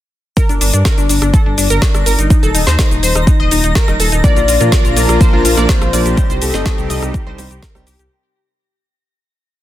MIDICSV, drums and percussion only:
0, 0, Header, 1, 2, 480
1, 0, Start_track
1, 0, Key_signature, -2, "minor"
1, 0, Tempo, 483871
1, 365, Time_signature, 4, 2, 24, 8
1, 9547, End_track
2, 0, Start_track
2, 0, Title_t, "Drums"
2, 365, Note_on_c, 9, 36, 125
2, 366, Note_on_c, 9, 42, 69
2, 373, Note_on_c, 9, 82, 47
2, 464, Note_off_c, 9, 36, 0
2, 465, Note_off_c, 9, 42, 0
2, 472, Note_off_c, 9, 82, 0
2, 489, Note_on_c, 9, 42, 38
2, 496, Note_on_c, 9, 82, 30
2, 588, Note_off_c, 9, 42, 0
2, 595, Note_off_c, 9, 82, 0
2, 606, Note_on_c, 9, 46, 106
2, 612, Note_on_c, 9, 82, 80
2, 705, Note_off_c, 9, 46, 0
2, 711, Note_off_c, 9, 82, 0
2, 730, Note_on_c, 9, 42, 55
2, 736, Note_on_c, 9, 82, 33
2, 829, Note_off_c, 9, 42, 0
2, 835, Note_off_c, 9, 82, 0
2, 844, Note_on_c, 9, 38, 118
2, 845, Note_on_c, 9, 36, 101
2, 846, Note_on_c, 9, 42, 68
2, 852, Note_on_c, 9, 82, 44
2, 943, Note_off_c, 9, 38, 0
2, 944, Note_off_c, 9, 36, 0
2, 945, Note_off_c, 9, 42, 0
2, 951, Note_off_c, 9, 82, 0
2, 969, Note_on_c, 9, 42, 38
2, 976, Note_on_c, 9, 82, 30
2, 1069, Note_off_c, 9, 42, 0
2, 1075, Note_off_c, 9, 82, 0
2, 1086, Note_on_c, 9, 46, 95
2, 1092, Note_on_c, 9, 82, 82
2, 1185, Note_off_c, 9, 46, 0
2, 1192, Note_off_c, 9, 82, 0
2, 1209, Note_on_c, 9, 37, 61
2, 1209, Note_on_c, 9, 42, 55
2, 1216, Note_on_c, 9, 82, 33
2, 1308, Note_off_c, 9, 37, 0
2, 1308, Note_off_c, 9, 42, 0
2, 1315, Note_off_c, 9, 82, 0
2, 1325, Note_on_c, 9, 36, 126
2, 1326, Note_on_c, 9, 42, 69
2, 1333, Note_on_c, 9, 82, 45
2, 1425, Note_off_c, 9, 36, 0
2, 1425, Note_off_c, 9, 42, 0
2, 1432, Note_off_c, 9, 82, 0
2, 1566, Note_on_c, 9, 46, 103
2, 1572, Note_on_c, 9, 82, 77
2, 1665, Note_off_c, 9, 46, 0
2, 1672, Note_off_c, 9, 82, 0
2, 1689, Note_on_c, 9, 42, 55
2, 1696, Note_on_c, 9, 82, 32
2, 1788, Note_off_c, 9, 42, 0
2, 1795, Note_off_c, 9, 82, 0
2, 1804, Note_on_c, 9, 38, 122
2, 1805, Note_on_c, 9, 36, 108
2, 1806, Note_on_c, 9, 42, 68
2, 1813, Note_on_c, 9, 82, 44
2, 1904, Note_off_c, 9, 36, 0
2, 1904, Note_off_c, 9, 38, 0
2, 1905, Note_off_c, 9, 42, 0
2, 1912, Note_off_c, 9, 82, 0
2, 1929, Note_on_c, 9, 37, 72
2, 1929, Note_on_c, 9, 42, 39
2, 1936, Note_on_c, 9, 82, 32
2, 2028, Note_off_c, 9, 37, 0
2, 2028, Note_off_c, 9, 42, 0
2, 2035, Note_off_c, 9, 82, 0
2, 2046, Note_on_c, 9, 46, 94
2, 2052, Note_on_c, 9, 82, 81
2, 2145, Note_off_c, 9, 46, 0
2, 2152, Note_off_c, 9, 82, 0
2, 2169, Note_on_c, 9, 42, 56
2, 2176, Note_on_c, 9, 82, 34
2, 2268, Note_off_c, 9, 42, 0
2, 2275, Note_off_c, 9, 82, 0
2, 2285, Note_on_c, 9, 36, 127
2, 2285, Note_on_c, 9, 42, 69
2, 2292, Note_on_c, 9, 82, 43
2, 2384, Note_off_c, 9, 36, 0
2, 2385, Note_off_c, 9, 42, 0
2, 2391, Note_off_c, 9, 82, 0
2, 2409, Note_on_c, 9, 42, 36
2, 2416, Note_on_c, 9, 82, 30
2, 2508, Note_off_c, 9, 42, 0
2, 2515, Note_off_c, 9, 82, 0
2, 2526, Note_on_c, 9, 46, 106
2, 2532, Note_on_c, 9, 82, 78
2, 2625, Note_off_c, 9, 46, 0
2, 2632, Note_off_c, 9, 82, 0
2, 2647, Note_on_c, 9, 38, 39
2, 2649, Note_on_c, 9, 42, 50
2, 2656, Note_on_c, 9, 82, 31
2, 2747, Note_off_c, 9, 38, 0
2, 2748, Note_off_c, 9, 42, 0
2, 2755, Note_off_c, 9, 82, 0
2, 2765, Note_on_c, 9, 36, 104
2, 2765, Note_on_c, 9, 38, 127
2, 2766, Note_on_c, 9, 42, 67
2, 2773, Note_on_c, 9, 82, 43
2, 2864, Note_off_c, 9, 36, 0
2, 2864, Note_off_c, 9, 38, 0
2, 2865, Note_off_c, 9, 42, 0
2, 2872, Note_off_c, 9, 82, 0
2, 2890, Note_on_c, 9, 42, 36
2, 2896, Note_on_c, 9, 82, 29
2, 2989, Note_off_c, 9, 42, 0
2, 2996, Note_off_c, 9, 82, 0
2, 3006, Note_on_c, 9, 46, 101
2, 3013, Note_on_c, 9, 82, 77
2, 3105, Note_off_c, 9, 46, 0
2, 3112, Note_off_c, 9, 82, 0
2, 3129, Note_on_c, 9, 37, 63
2, 3129, Note_on_c, 9, 42, 53
2, 3136, Note_on_c, 9, 82, 33
2, 3229, Note_off_c, 9, 37, 0
2, 3229, Note_off_c, 9, 42, 0
2, 3235, Note_off_c, 9, 82, 0
2, 3245, Note_on_c, 9, 36, 126
2, 3246, Note_on_c, 9, 42, 66
2, 3253, Note_on_c, 9, 82, 42
2, 3344, Note_off_c, 9, 36, 0
2, 3345, Note_off_c, 9, 42, 0
2, 3352, Note_off_c, 9, 82, 0
2, 3485, Note_on_c, 9, 46, 103
2, 3492, Note_on_c, 9, 82, 71
2, 3585, Note_off_c, 9, 46, 0
2, 3591, Note_off_c, 9, 82, 0
2, 3609, Note_on_c, 9, 42, 51
2, 3616, Note_on_c, 9, 82, 33
2, 3708, Note_off_c, 9, 42, 0
2, 3715, Note_off_c, 9, 82, 0
2, 3724, Note_on_c, 9, 38, 126
2, 3725, Note_on_c, 9, 36, 107
2, 3725, Note_on_c, 9, 42, 64
2, 3732, Note_on_c, 9, 82, 43
2, 3823, Note_off_c, 9, 38, 0
2, 3824, Note_off_c, 9, 36, 0
2, 3825, Note_off_c, 9, 42, 0
2, 3831, Note_off_c, 9, 82, 0
2, 3849, Note_on_c, 9, 37, 75
2, 3849, Note_on_c, 9, 42, 39
2, 3855, Note_on_c, 9, 82, 29
2, 3948, Note_off_c, 9, 37, 0
2, 3948, Note_off_c, 9, 42, 0
2, 3955, Note_off_c, 9, 82, 0
2, 3965, Note_on_c, 9, 46, 96
2, 3972, Note_on_c, 9, 82, 73
2, 4065, Note_off_c, 9, 46, 0
2, 4071, Note_off_c, 9, 82, 0
2, 4089, Note_on_c, 9, 42, 53
2, 4096, Note_on_c, 9, 82, 33
2, 4188, Note_off_c, 9, 42, 0
2, 4195, Note_off_c, 9, 82, 0
2, 4205, Note_on_c, 9, 36, 127
2, 4205, Note_on_c, 9, 42, 62
2, 4212, Note_on_c, 9, 82, 43
2, 4304, Note_off_c, 9, 36, 0
2, 4304, Note_off_c, 9, 42, 0
2, 4311, Note_off_c, 9, 82, 0
2, 4329, Note_on_c, 9, 42, 36
2, 4336, Note_on_c, 9, 82, 30
2, 4428, Note_off_c, 9, 42, 0
2, 4435, Note_off_c, 9, 82, 0
2, 4446, Note_on_c, 9, 46, 116
2, 4452, Note_on_c, 9, 82, 79
2, 4545, Note_off_c, 9, 46, 0
2, 4552, Note_off_c, 9, 82, 0
2, 4569, Note_on_c, 9, 42, 49
2, 4576, Note_on_c, 9, 82, 30
2, 4668, Note_off_c, 9, 42, 0
2, 4675, Note_off_c, 9, 82, 0
2, 4684, Note_on_c, 9, 38, 123
2, 4685, Note_on_c, 9, 36, 112
2, 4686, Note_on_c, 9, 42, 63
2, 4692, Note_on_c, 9, 82, 42
2, 4783, Note_off_c, 9, 38, 0
2, 4784, Note_off_c, 9, 36, 0
2, 4785, Note_off_c, 9, 42, 0
2, 4792, Note_off_c, 9, 82, 0
2, 4809, Note_on_c, 9, 42, 36
2, 4816, Note_on_c, 9, 82, 29
2, 4908, Note_off_c, 9, 42, 0
2, 4915, Note_off_c, 9, 82, 0
2, 4926, Note_on_c, 9, 46, 96
2, 4932, Note_on_c, 9, 82, 76
2, 5025, Note_off_c, 9, 46, 0
2, 5031, Note_off_c, 9, 82, 0
2, 5049, Note_on_c, 9, 37, 66
2, 5049, Note_on_c, 9, 42, 53
2, 5056, Note_on_c, 9, 82, 32
2, 5148, Note_off_c, 9, 37, 0
2, 5148, Note_off_c, 9, 42, 0
2, 5155, Note_off_c, 9, 82, 0
2, 5165, Note_on_c, 9, 36, 127
2, 5166, Note_on_c, 9, 42, 66
2, 5172, Note_on_c, 9, 82, 44
2, 5264, Note_off_c, 9, 36, 0
2, 5265, Note_off_c, 9, 42, 0
2, 5272, Note_off_c, 9, 82, 0
2, 5406, Note_on_c, 9, 46, 108
2, 5412, Note_on_c, 9, 82, 75
2, 5505, Note_off_c, 9, 46, 0
2, 5511, Note_off_c, 9, 82, 0
2, 5529, Note_on_c, 9, 42, 51
2, 5535, Note_on_c, 9, 82, 33
2, 5628, Note_off_c, 9, 42, 0
2, 5635, Note_off_c, 9, 82, 0
2, 5644, Note_on_c, 9, 38, 124
2, 5645, Note_on_c, 9, 36, 108
2, 5646, Note_on_c, 9, 42, 64
2, 5652, Note_on_c, 9, 82, 44
2, 5743, Note_off_c, 9, 38, 0
2, 5744, Note_off_c, 9, 36, 0
2, 5745, Note_off_c, 9, 42, 0
2, 5752, Note_off_c, 9, 82, 0
2, 5769, Note_on_c, 9, 37, 80
2, 5769, Note_on_c, 9, 42, 35
2, 5776, Note_on_c, 9, 82, 29
2, 5868, Note_off_c, 9, 37, 0
2, 5868, Note_off_c, 9, 42, 0
2, 5875, Note_off_c, 9, 82, 0
2, 5886, Note_on_c, 9, 46, 102
2, 5892, Note_on_c, 9, 82, 75
2, 5985, Note_off_c, 9, 46, 0
2, 5991, Note_off_c, 9, 82, 0
2, 6009, Note_on_c, 9, 42, 55
2, 6015, Note_on_c, 9, 82, 32
2, 6108, Note_off_c, 9, 42, 0
2, 6115, Note_off_c, 9, 82, 0
2, 6125, Note_on_c, 9, 36, 127
2, 6125, Note_on_c, 9, 42, 62
2, 6132, Note_on_c, 9, 82, 45
2, 6224, Note_off_c, 9, 36, 0
2, 6225, Note_off_c, 9, 42, 0
2, 6231, Note_off_c, 9, 82, 0
2, 6249, Note_on_c, 9, 42, 35
2, 6255, Note_on_c, 9, 82, 31
2, 6348, Note_off_c, 9, 42, 0
2, 6354, Note_off_c, 9, 82, 0
2, 6365, Note_on_c, 9, 46, 115
2, 6372, Note_on_c, 9, 82, 78
2, 6464, Note_off_c, 9, 46, 0
2, 6471, Note_off_c, 9, 82, 0
2, 6487, Note_on_c, 9, 38, 36
2, 6495, Note_on_c, 9, 82, 33
2, 6586, Note_off_c, 9, 38, 0
2, 6594, Note_off_c, 9, 82, 0
2, 6603, Note_on_c, 9, 38, 116
2, 6605, Note_on_c, 9, 36, 110
2, 6605, Note_on_c, 9, 42, 61
2, 6612, Note_on_c, 9, 82, 43
2, 6703, Note_off_c, 9, 38, 0
2, 6704, Note_off_c, 9, 36, 0
2, 6704, Note_off_c, 9, 42, 0
2, 6711, Note_off_c, 9, 82, 0
2, 6728, Note_on_c, 9, 42, 33
2, 6735, Note_on_c, 9, 82, 30
2, 6828, Note_off_c, 9, 42, 0
2, 6834, Note_off_c, 9, 82, 0
2, 6845, Note_on_c, 9, 46, 97
2, 6852, Note_on_c, 9, 82, 75
2, 6944, Note_off_c, 9, 46, 0
2, 6951, Note_off_c, 9, 82, 0
2, 6969, Note_on_c, 9, 37, 68
2, 6969, Note_on_c, 9, 42, 52
2, 6976, Note_on_c, 9, 82, 33
2, 7068, Note_off_c, 9, 37, 0
2, 7068, Note_off_c, 9, 42, 0
2, 7075, Note_off_c, 9, 82, 0
2, 7085, Note_on_c, 9, 36, 127
2, 7085, Note_on_c, 9, 42, 61
2, 7092, Note_on_c, 9, 82, 44
2, 7184, Note_off_c, 9, 36, 0
2, 7185, Note_off_c, 9, 42, 0
2, 7191, Note_off_c, 9, 82, 0
2, 7325, Note_on_c, 9, 46, 105
2, 7332, Note_on_c, 9, 82, 74
2, 7425, Note_off_c, 9, 46, 0
2, 7431, Note_off_c, 9, 82, 0
2, 7449, Note_on_c, 9, 42, 48
2, 7456, Note_on_c, 9, 82, 32
2, 7548, Note_off_c, 9, 42, 0
2, 7555, Note_off_c, 9, 82, 0
2, 7564, Note_on_c, 9, 38, 121
2, 7565, Note_on_c, 9, 36, 107
2, 7566, Note_on_c, 9, 42, 65
2, 7572, Note_on_c, 9, 82, 44
2, 7663, Note_off_c, 9, 38, 0
2, 7664, Note_off_c, 9, 36, 0
2, 7665, Note_off_c, 9, 42, 0
2, 7672, Note_off_c, 9, 82, 0
2, 7689, Note_on_c, 9, 37, 79
2, 7689, Note_on_c, 9, 42, 35
2, 7696, Note_on_c, 9, 82, 30
2, 7788, Note_off_c, 9, 37, 0
2, 7788, Note_off_c, 9, 42, 0
2, 7795, Note_off_c, 9, 82, 0
2, 7805, Note_on_c, 9, 46, 94
2, 7812, Note_on_c, 9, 82, 80
2, 7904, Note_off_c, 9, 46, 0
2, 7911, Note_off_c, 9, 82, 0
2, 7929, Note_on_c, 9, 42, 52
2, 7935, Note_on_c, 9, 82, 33
2, 8028, Note_off_c, 9, 42, 0
2, 8035, Note_off_c, 9, 82, 0
2, 9547, End_track
0, 0, End_of_file